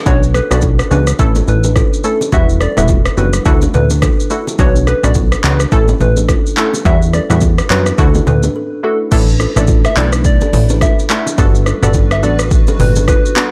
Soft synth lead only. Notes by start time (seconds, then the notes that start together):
0.07 C#5
0.35 B4
0.52 D5
0.92 B4
1.20 A4
1.49 B4
2.05 A4
2.33 E5
2.62 D5
2.78 E5
3.18 B4
3.46 A4
3.75 B4
4.31 A4
4.60 C#5
4.88 B4
5.05 D5
5.45 B4
5.73 A4
6.01 B4
6.58 A4
6.86 E5
7.14 D5
7.31 E5
7.71 B4
7.99 A4
8.28 B4
8.84 A4
9.57 D5
9.86 E5
9.98 D5
10.26 D5
10.82 E5
11.11 E5
11.84 D5
12.12 E5
12.24 D5
12.81 B4
13.09 B4